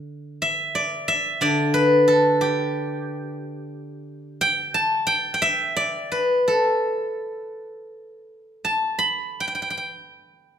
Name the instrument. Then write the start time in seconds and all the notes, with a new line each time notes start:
guzheng
Already playing: D3
0.42 E5
0.75 D5
1.08 E5
1.41 D3 D5
1.74 B4
2.08 A4
2.41 G4
4.41 G5
4.74 A5
5.07 G5
5.34 G5
5.42 E5
5.76 D5
6.12 B4
6.48 A4
8.65 A5
8.99 B5
9.40 G5
9.48 G5
9.55 G5
9.62 G5
9.70 G5
9.77 G5